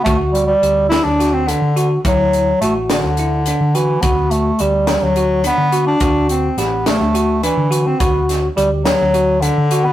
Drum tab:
HH |xxxxxxx|xxxxxxx|xxxxxxx|xxxxxxx|
SD |---oo--|---o---|---o---|--oo---|
BD |o------|o------|o------|o------|

HH |xxxxxxx|
SD |-o-o---|
BD |o------|